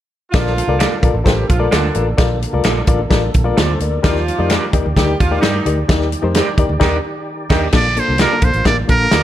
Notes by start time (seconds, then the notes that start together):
0.32 A#1 D3 F3 A#3 F4 A4 A#4 D5, kick, snare, closed hi-hat
0.46 snare
0.56 closed hi-hat, muted conga
0.67 C2 F4 A4 A#4 D5, high conga
0.79 A#3 F4 A4 D5, finger snap, snare, closed hi-hat, high conga
1.03 A#1 F4 A4 A#4 D5, kick, closed hi-hat, low conga
1.14 A1, low conga
1.24 A1 G3 F4 G4 A4 A#4 C5, kick, snare, closed hi-hat, muted conga
1.49 A#1 F3 F4, kick, closed hi-hat, muted conga
1.59 F4 A4 A#4 D5, high conga
1.71 D2 D3 A#3 D4 F4 A4 D5, finger snap, snare, closed hi-hat
1.85 high conga
1.95 A1 F4 A4 A#4 D5, closed hi-hat, muted conga, low conga
2.17 A#1 F4 A4 A#4 D5, kick, snare, closed hi-hat, muted conga
2.42 closed hi-hat, muted conga
2.53 C2 F4 A4 A#4 D5, high conga
2.63 A#1 A#3 F4 A4 D5, finger snap, snare, closed hi-hat, muted conga, high conga
2.87 A1 F4 A4 A#4 D5, kick, closed hi-hat, muted conga, low conga
2.99 low conga
3.10 A1 F4 A4 A#4 D5, kick, snare, closed hi-hat
3.34 A#1, kick, closed hi-hat, muted conga
3.44 F4 A4 A#4 D5, high conga
3.57 D2 A#3 F4 A4 C5 D5, finger snap, snare, closed hi-hat, muted conga
3.70 high conga
3.79 D2 A#4 D5, closed hi-hat, low conga
4.03 D#2 D#3 F3 D#4 F4 G4 A#4 D5, kick, snare, closed hi-hat
4.16 snare
4.28 closed hi-hat, muted conga
4.38 F2 D#4 G4 A#4 D5, high conga
4.50 D4 G4 A#4 D5, finger snap, snare, closed hi-hat, high conga
4.73 D#2 D#4 G4 A#4 D5, kick, closed hi-hat, low conga
4.85 D2, low conga
4.96 D2 G3 D#4 G4 A#4 D5, kick, snare, closed hi-hat, muted conga
5.20 D#2 F3 F4, kick, closed hi-hat, muted conga
5.31 D#4 G4 A#4 D5, high conga
5.41 G2 D#3 D4 D#4 G4 A#4 D5, finger snap, snare, closed hi-hat
5.55 high conga
5.65 D2 D#4 G4 A#4 D5, closed hi-hat, low conga
5.89 D#2 D#4 G4 A#4 D5, kick, snare, closed hi-hat
6.01 snare
6.12 closed hi-hat, muted conga
6.22 F2 D#4 G4 A#4 C5, high conga
6.34 D4 G4 A#4 D5, finger snap, snare, closed hi-hat, muted conga, high conga
6.57 D#2 D#4 G4 A#4 D5, kick, closed hi-hat, low conga
6.69 D2, low conga
6.80 D#2 D#3 D4 D#4 G4 A#4 D5, kick, snare, crash
7.49 D#2 D#3 D4 D#4 G4 A#4 D5 D#5 G5, kick, snare, crash
7.72 A#1 D3 A#3 D4 F4 A4 D5, kick, snare, crash
7.96 A#3 D4 F4 A4 C5, closed hi-hat
8.08 C2
8.18 A#3 F4 A4 A#4 D5, finger snap, snare, closed hi-hat
8.32 A#3 D4 F4 A4
8.42 A#1 C5, kick, closed hi-hat
8.53 A1, closed hi-hat
8.65 A1 A#3 D4 F4 A#4 D5, kick, snare, closed hi-hat
8.88 A#1 A#3 D4 F4 A4 A#4, kick, closed hi-hat
9.11 D2 A#3 F4 A4 D5, finger snap, snare, closed hi-hat